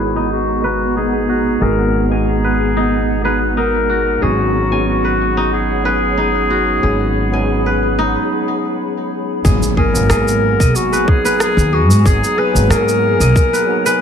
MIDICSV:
0, 0, Header, 1, 8, 480
1, 0, Start_track
1, 0, Key_signature, 5, "minor"
1, 0, Tempo, 652174
1, 1189, Time_signature, 4, 2, 24, 8
1, 10314, End_track
2, 0, Start_track
2, 0, Title_t, "Ambient pad"
2, 0, Program_c, 0, 92
2, 0, Note_on_c, 0, 59, 69
2, 0, Note_on_c, 0, 68, 70
2, 0, Note_on_c, 0, 78, 67
2, 0, Note_on_c, 0, 82, 76
2, 3079, Note_off_c, 0, 68, 0
2, 3081, Note_off_c, 0, 82, 0
2, 3082, Note_off_c, 0, 59, 0
2, 3108, Note_on_c, 0, 83, 86
2, 3110, Note_on_c, 0, 68, 76
2, 3110, Note_on_c, 0, 73, 66
2, 6920, Note_off_c, 0, 73, 0
2, 6920, Note_off_c, 0, 78, 0
2, 6920, Note_off_c, 0, 83, 0
2, 6921, Note_off_c, 0, 68, 0
2, 6949, Note_on_c, 0, 80, 94
2, 6949, Note_on_c, 0, 82, 76
2, 6952, Note_on_c, 0, 68, 81
2, 6952, Note_on_c, 0, 78, 72
2, 10314, Note_off_c, 0, 68, 0
2, 10314, Note_off_c, 0, 78, 0
2, 10314, Note_off_c, 0, 80, 0
2, 10314, Note_off_c, 0, 82, 0
2, 10314, End_track
3, 0, Start_track
3, 0, Title_t, "Clarinet"
3, 0, Program_c, 1, 71
3, 0, Note_on_c, 1, 64, 80
3, 228, Note_off_c, 1, 64, 0
3, 232, Note_on_c, 1, 66, 81
3, 682, Note_off_c, 1, 66, 0
3, 710, Note_on_c, 1, 68, 90
3, 1193, Note_on_c, 1, 70, 91
3, 1204, Note_off_c, 1, 68, 0
3, 1476, Note_off_c, 1, 70, 0
3, 1670, Note_on_c, 1, 68, 88
3, 2360, Note_off_c, 1, 68, 0
3, 2386, Note_on_c, 1, 68, 79
3, 2495, Note_off_c, 1, 68, 0
3, 2631, Note_on_c, 1, 70, 93
3, 3113, Note_on_c, 1, 66, 93
3, 3124, Note_off_c, 1, 70, 0
3, 3587, Note_off_c, 1, 66, 0
3, 3592, Note_on_c, 1, 66, 82
3, 4041, Note_off_c, 1, 66, 0
3, 4073, Note_on_c, 1, 68, 88
3, 5962, Note_off_c, 1, 68, 0
3, 7197, Note_on_c, 1, 70, 93
3, 7914, Note_on_c, 1, 66, 88
3, 7925, Note_off_c, 1, 70, 0
3, 8159, Note_on_c, 1, 68, 97
3, 8170, Note_off_c, 1, 66, 0
3, 8394, Note_off_c, 1, 68, 0
3, 8404, Note_on_c, 1, 68, 106
3, 8640, Note_on_c, 1, 66, 93
3, 8651, Note_off_c, 1, 68, 0
3, 8880, Note_on_c, 1, 68, 106
3, 8891, Note_off_c, 1, 66, 0
3, 9119, Note_on_c, 1, 71, 101
3, 9130, Note_off_c, 1, 68, 0
3, 9357, Note_on_c, 1, 70, 106
3, 9368, Note_off_c, 1, 71, 0
3, 10314, Note_off_c, 1, 70, 0
3, 10314, End_track
4, 0, Start_track
4, 0, Title_t, "Kora"
4, 0, Program_c, 2, 46
4, 0, Note_on_c, 2, 68, 65
4, 0, Note_on_c, 2, 71, 59
4, 0, Note_on_c, 2, 80, 65
4, 119, Note_on_c, 2, 63, 80
4, 276, Note_off_c, 2, 68, 0
4, 301, Note_off_c, 2, 80, 0
4, 468, Note_off_c, 2, 71, 0
4, 471, Note_on_c, 2, 71, 87
4, 709, Note_off_c, 2, 63, 0
4, 712, Note_on_c, 2, 63, 75
4, 949, Note_on_c, 2, 66, 62
4, 1188, Note_on_c, 2, 68, 68
4, 1375, Note_off_c, 2, 71, 0
4, 1556, Note_on_c, 2, 80, 65
4, 1797, Note_on_c, 2, 71, 64
4, 1906, Note_off_c, 2, 63, 0
4, 2025, Note_off_c, 2, 66, 0
4, 2037, Note_on_c, 2, 63, 94
4, 2192, Note_off_c, 2, 68, 0
4, 2218, Note_off_c, 2, 80, 0
4, 2387, Note_off_c, 2, 71, 0
4, 2390, Note_on_c, 2, 71, 88
4, 2625, Note_off_c, 2, 63, 0
4, 2628, Note_on_c, 2, 63, 74
4, 2866, Note_on_c, 2, 66, 64
4, 3106, Note_on_c, 2, 68, 67
4, 3295, Note_off_c, 2, 71, 0
4, 3473, Note_on_c, 2, 80, 65
4, 3713, Note_on_c, 2, 71, 65
4, 3822, Note_off_c, 2, 63, 0
4, 3942, Note_off_c, 2, 66, 0
4, 3954, Note_on_c, 2, 63, 87
4, 4110, Note_off_c, 2, 68, 0
4, 4135, Note_off_c, 2, 80, 0
4, 4304, Note_off_c, 2, 71, 0
4, 4307, Note_on_c, 2, 71, 93
4, 4542, Note_off_c, 2, 63, 0
4, 4545, Note_on_c, 2, 63, 77
4, 4786, Note_on_c, 2, 66, 67
4, 5027, Note_on_c, 2, 68, 71
4, 5212, Note_off_c, 2, 71, 0
4, 5398, Note_on_c, 2, 80, 67
4, 5639, Note_on_c, 2, 71, 66
4, 5739, Note_off_c, 2, 63, 0
4, 5862, Note_off_c, 2, 66, 0
4, 5878, Note_on_c, 2, 63, 90
4, 6031, Note_off_c, 2, 68, 0
4, 6060, Note_off_c, 2, 80, 0
4, 6544, Note_off_c, 2, 71, 0
4, 6952, Note_on_c, 2, 68, 73
4, 7072, Note_off_c, 2, 63, 0
4, 7188, Note_off_c, 2, 68, 0
4, 7191, Note_on_c, 2, 68, 74
4, 7429, Note_off_c, 2, 68, 0
4, 7432, Note_on_c, 2, 68, 84
4, 7802, Note_on_c, 2, 75, 74
4, 8041, Note_on_c, 2, 71, 76
4, 8278, Note_off_c, 2, 71, 0
4, 8281, Note_on_c, 2, 71, 103
4, 8436, Note_off_c, 2, 68, 0
4, 8590, Note_off_c, 2, 75, 0
4, 8631, Note_on_c, 2, 68, 69
4, 8871, Note_off_c, 2, 68, 0
4, 8874, Note_on_c, 2, 68, 78
4, 9108, Note_off_c, 2, 68, 0
4, 9111, Note_on_c, 2, 68, 75
4, 9186, Note_off_c, 2, 71, 0
4, 9349, Note_off_c, 2, 68, 0
4, 9352, Note_on_c, 2, 68, 79
4, 9720, Note_on_c, 2, 75, 80
4, 9959, Note_on_c, 2, 71, 77
4, 10197, Note_off_c, 2, 71, 0
4, 10200, Note_on_c, 2, 71, 107
4, 10314, Note_off_c, 2, 68, 0
4, 10314, Note_off_c, 2, 71, 0
4, 10314, Note_off_c, 2, 75, 0
4, 10314, End_track
5, 0, Start_track
5, 0, Title_t, "Tine electric piano"
5, 0, Program_c, 3, 4
5, 0, Control_c, 3, 64, 127
5, 0, Note_on_c, 3, 56, 66
5, 0, Note_on_c, 3, 59, 65
5, 0, Note_on_c, 3, 63, 67
5, 0, Note_on_c, 3, 66, 65
5, 0, Note_on_c, 3, 70, 75
5, 0, Note_on_c, 3, 75, 59
5, 0, Note_on_c, 3, 82, 79
5, 436, Note_off_c, 3, 56, 0
5, 439, Note_off_c, 3, 59, 0
5, 442, Note_off_c, 3, 75, 0
5, 447, Note_off_c, 3, 66, 0
5, 451, Note_off_c, 3, 82, 0
5, 453, Note_on_c, 3, 56, 65
5, 460, Note_on_c, 3, 59, 58
5, 470, Note_off_c, 3, 63, 0
5, 470, Note_on_c, 3, 63, 55
5, 476, Note_on_c, 3, 66, 59
5, 483, Note_on_c, 3, 82, 70
5, 1155, Note_off_c, 3, 56, 0
5, 1158, Note_off_c, 3, 59, 0
5, 1163, Note_off_c, 3, 63, 0
5, 1166, Note_off_c, 3, 66, 0
5, 1170, Note_off_c, 3, 82, 0
5, 1176, Note_on_c, 3, 56, 70
5, 1179, Note_on_c, 3, 59, 70
5, 1185, Note_on_c, 3, 63, 70
5, 1189, Note_on_c, 3, 66, 64
5, 1192, Note_on_c, 3, 82, 83
5, 1521, Note_off_c, 3, 56, 0
5, 1522, Note_off_c, 3, 59, 0
5, 1525, Note_off_c, 3, 63, 0
5, 1527, Note_off_c, 3, 66, 0
5, 1528, Note_off_c, 3, 82, 0
5, 1543, Note_on_c, 3, 56, 68
5, 1549, Note_on_c, 3, 59, 61
5, 1557, Note_on_c, 3, 63, 61
5, 1566, Note_on_c, 3, 66, 66
5, 1571, Note_on_c, 3, 82, 76
5, 2355, Note_off_c, 3, 56, 0
5, 2358, Note_off_c, 3, 59, 0
5, 2362, Note_off_c, 3, 63, 0
5, 2367, Note_off_c, 3, 66, 0
5, 2369, Note_off_c, 3, 82, 0
5, 2371, Note_on_c, 3, 56, 71
5, 2379, Note_on_c, 3, 59, 58
5, 2386, Note_on_c, 3, 63, 58
5, 2395, Note_on_c, 3, 66, 59
5, 2400, Note_on_c, 3, 82, 70
5, 3074, Note_off_c, 3, 56, 0
5, 3077, Note_off_c, 3, 59, 0
5, 3081, Note_off_c, 3, 63, 0
5, 3086, Note_off_c, 3, 66, 0
5, 3088, Note_off_c, 3, 82, 0
5, 3099, Note_on_c, 3, 54, 71
5, 3101, Note_on_c, 3, 59, 68
5, 3107, Note_on_c, 3, 61, 65
5, 3110, Note_on_c, 3, 63, 63
5, 3114, Note_on_c, 3, 68, 76
5, 3119, Control_c, 3, 64, 0
5, 3121, Note_off_c, 3, 70, 0
5, 3259, Control_c, 3, 64, 127
5, 3442, Note_off_c, 3, 54, 0
5, 3443, Note_off_c, 3, 59, 0
5, 3446, Note_off_c, 3, 61, 0
5, 3448, Note_off_c, 3, 63, 0
5, 3449, Note_off_c, 3, 68, 0
5, 3459, Note_on_c, 3, 54, 70
5, 3466, Note_on_c, 3, 59, 67
5, 3474, Note_on_c, 3, 61, 64
5, 3482, Note_on_c, 3, 63, 67
5, 3488, Note_on_c, 3, 68, 76
5, 4273, Note_off_c, 3, 54, 0
5, 4277, Note_off_c, 3, 59, 0
5, 4281, Note_off_c, 3, 61, 0
5, 4285, Note_off_c, 3, 63, 0
5, 4288, Note_off_c, 3, 68, 0
5, 4294, Note_on_c, 3, 54, 69
5, 4302, Note_on_c, 3, 59, 57
5, 4310, Note_on_c, 3, 61, 60
5, 4316, Note_on_c, 3, 63, 59
5, 4323, Note_on_c, 3, 68, 80
5, 4995, Note_off_c, 3, 54, 0
5, 4999, Note_off_c, 3, 59, 0
5, 5003, Note_off_c, 3, 61, 0
5, 5006, Note_off_c, 3, 63, 0
5, 5010, Note_off_c, 3, 68, 0
5, 5017, Note_on_c, 3, 54, 73
5, 5023, Note_on_c, 3, 59, 66
5, 5025, Note_on_c, 3, 61, 69
5, 5028, Note_on_c, 3, 63, 67
5, 5033, Note_on_c, 3, 68, 81
5, 5361, Note_off_c, 3, 54, 0
5, 5364, Note_off_c, 3, 59, 0
5, 5365, Note_off_c, 3, 61, 0
5, 5366, Note_off_c, 3, 63, 0
5, 5369, Note_off_c, 3, 68, 0
5, 5383, Note_on_c, 3, 54, 69
5, 5389, Note_on_c, 3, 59, 66
5, 5397, Note_on_c, 3, 61, 67
5, 5406, Note_on_c, 3, 63, 67
5, 5412, Note_on_c, 3, 68, 83
5, 5982, Note_off_c, 3, 54, 0
5, 5985, Note_off_c, 3, 59, 0
5, 5989, Note_off_c, 3, 61, 0
5, 5993, Note_off_c, 3, 63, 0
5, 5996, Note_off_c, 3, 68, 0
5, 6947, Note_on_c, 3, 54, 83
5, 6949, Note_on_c, 3, 58, 75
5, 6954, Note_on_c, 3, 59, 70
5, 6958, Control_c, 3, 64, 0
5, 6959, Note_on_c, 3, 63, 72
5, 6961, Note_on_c, 3, 68, 89
5, 7090, Control_c, 3, 64, 127
5, 7286, Note_off_c, 3, 54, 0
5, 7287, Note_off_c, 3, 58, 0
5, 7290, Note_off_c, 3, 59, 0
5, 7292, Note_off_c, 3, 63, 0
5, 7293, Note_off_c, 3, 68, 0
5, 7311, Note_on_c, 3, 54, 77
5, 7316, Note_on_c, 3, 58, 72
5, 7322, Note_on_c, 3, 59, 71
5, 7331, Note_on_c, 3, 63, 70
5, 7337, Note_on_c, 3, 68, 88
5, 8119, Note_off_c, 3, 54, 0
5, 8122, Note_off_c, 3, 58, 0
5, 8125, Note_off_c, 3, 59, 0
5, 8129, Note_off_c, 3, 63, 0
5, 8132, Note_off_c, 3, 68, 0
5, 8134, Note_on_c, 3, 54, 72
5, 8149, Note_on_c, 3, 59, 65
5, 8157, Note_on_c, 3, 63, 70
5, 8163, Note_on_c, 3, 68, 76
5, 8835, Note_off_c, 3, 54, 0
5, 8842, Note_off_c, 3, 59, 0
5, 8846, Note_off_c, 3, 63, 0
5, 8850, Note_off_c, 3, 68, 0
5, 8859, Note_on_c, 3, 54, 81
5, 8869, Note_on_c, 3, 59, 72
5, 8871, Note_on_c, 3, 63, 75
5, 8875, Note_on_c, 3, 68, 92
5, 9202, Note_off_c, 3, 54, 0
5, 9207, Note_off_c, 3, 59, 0
5, 9208, Note_off_c, 3, 63, 0
5, 9210, Note_off_c, 3, 68, 0
5, 9224, Note_on_c, 3, 54, 86
5, 9230, Note_on_c, 3, 58, 75
5, 9238, Note_on_c, 3, 59, 72
5, 9246, Note_on_c, 3, 63, 72
5, 9253, Note_on_c, 3, 68, 94
5, 10036, Note_off_c, 3, 54, 0
5, 10039, Note_off_c, 3, 58, 0
5, 10043, Note_off_c, 3, 59, 0
5, 10047, Note_off_c, 3, 63, 0
5, 10050, Note_off_c, 3, 68, 0
5, 10056, Note_on_c, 3, 54, 76
5, 10070, Note_on_c, 3, 59, 68
5, 10077, Note_on_c, 3, 63, 71
5, 10085, Note_on_c, 3, 68, 77
5, 10314, Note_off_c, 3, 54, 0
5, 10314, Note_off_c, 3, 59, 0
5, 10314, Note_off_c, 3, 63, 0
5, 10314, Note_off_c, 3, 68, 0
5, 10314, End_track
6, 0, Start_track
6, 0, Title_t, "Upright bass"
6, 0, Program_c, 4, 32
6, 0, Note_on_c, 4, 32, 78
6, 1169, Note_off_c, 4, 32, 0
6, 1187, Note_on_c, 4, 32, 77
6, 3086, Note_off_c, 4, 32, 0
6, 3108, Note_on_c, 4, 32, 74
6, 5007, Note_off_c, 4, 32, 0
6, 5028, Note_on_c, 4, 32, 78
6, 5989, Note_off_c, 4, 32, 0
6, 6953, Note_on_c, 4, 32, 92
6, 7045, Note_off_c, 4, 32, 0
6, 7318, Note_on_c, 4, 32, 87
6, 7399, Note_off_c, 4, 32, 0
6, 7432, Note_on_c, 4, 44, 88
6, 7743, Note_off_c, 4, 44, 0
6, 7802, Note_on_c, 4, 35, 76
6, 7881, Note_off_c, 4, 35, 0
6, 8515, Note_on_c, 4, 39, 93
6, 8757, Note_off_c, 4, 39, 0
6, 8757, Note_on_c, 4, 44, 82
6, 8838, Note_off_c, 4, 44, 0
6, 8872, Note_on_c, 4, 32, 91
6, 8964, Note_off_c, 4, 32, 0
6, 9236, Note_on_c, 4, 32, 91
6, 9318, Note_off_c, 4, 32, 0
6, 9344, Note_on_c, 4, 44, 84
6, 9659, Note_off_c, 4, 44, 0
6, 9716, Note_on_c, 4, 35, 81
6, 9798, Note_off_c, 4, 35, 0
6, 10314, End_track
7, 0, Start_track
7, 0, Title_t, "Impact"
7, 0, Program_c, 5, 103
7, 6952, Note_on_c, 5, 60, 77
7, 8871, Note_off_c, 5, 60, 0
7, 10314, End_track
8, 0, Start_track
8, 0, Title_t, "Drums"
8, 6953, Note_on_c, 9, 36, 120
8, 6959, Note_on_c, 9, 82, 60
8, 7027, Note_off_c, 9, 36, 0
8, 7033, Note_off_c, 9, 82, 0
8, 7085, Note_on_c, 9, 82, 32
8, 7159, Note_off_c, 9, 82, 0
8, 7193, Note_on_c, 9, 36, 61
8, 7267, Note_off_c, 9, 36, 0
8, 7327, Note_on_c, 9, 82, 65
8, 7401, Note_off_c, 9, 82, 0
8, 7431, Note_on_c, 9, 37, 103
8, 7436, Note_on_c, 9, 82, 55
8, 7505, Note_off_c, 9, 37, 0
8, 7510, Note_off_c, 9, 82, 0
8, 7566, Note_on_c, 9, 82, 35
8, 7639, Note_off_c, 9, 82, 0
8, 7802, Note_on_c, 9, 36, 99
8, 7808, Note_on_c, 9, 82, 67
8, 7875, Note_off_c, 9, 36, 0
8, 7881, Note_off_c, 9, 82, 0
8, 7917, Note_on_c, 9, 82, 57
8, 7991, Note_off_c, 9, 82, 0
8, 8046, Note_on_c, 9, 82, 34
8, 8119, Note_off_c, 9, 82, 0
8, 8154, Note_on_c, 9, 36, 112
8, 8227, Note_off_c, 9, 36, 0
8, 8286, Note_on_c, 9, 82, 67
8, 8359, Note_off_c, 9, 82, 0
8, 8392, Note_on_c, 9, 37, 102
8, 8397, Note_on_c, 9, 82, 56
8, 8466, Note_off_c, 9, 37, 0
8, 8471, Note_off_c, 9, 82, 0
8, 8527, Note_on_c, 9, 82, 34
8, 8600, Note_off_c, 9, 82, 0
8, 8765, Note_on_c, 9, 82, 69
8, 8838, Note_off_c, 9, 82, 0
8, 8873, Note_on_c, 9, 36, 127
8, 8878, Note_on_c, 9, 82, 59
8, 8946, Note_off_c, 9, 36, 0
8, 8951, Note_off_c, 9, 82, 0
8, 9008, Note_on_c, 9, 82, 35
8, 9081, Note_off_c, 9, 82, 0
8, 9247, Note_on_c, 9, 82, 71
8, 9320, Note_off_c, 9, 82, 0
8, 9351, Note_on_c, 9, 37, 99
8, 9356, Note_on_c, 9, 82, 57
8, 9425, Note_off_c, 9, 37, 0
8, 9430, Note_off_c, 9, 82, 0
8, 9484, Note_on_c, 9, 82, 36
8, 9558, Note_off_c, 9, 82, 0
8, 9723, Note_on_c, 9, 82, 70
8, 9796, Note_off_c, 9, 82, 0
8, 9831, Note_on_c, 9, 36, 116
8, 9836, Note_on_c, 9, 82, 59
8, 9905, Note_off_c, 9, 36, 0
8, 9910, Note_off_c, 9, 82, 0
8, 9967, Note_on_c, 9, 82, 36
8, 10041, Note_off_c, 9, 82, 0
8, 10204, Note_on_c, 9, 82, 70
8, 10278, Note_off_c, 9, 82, 0
8, 10314, End_track
0, 0, End_of_file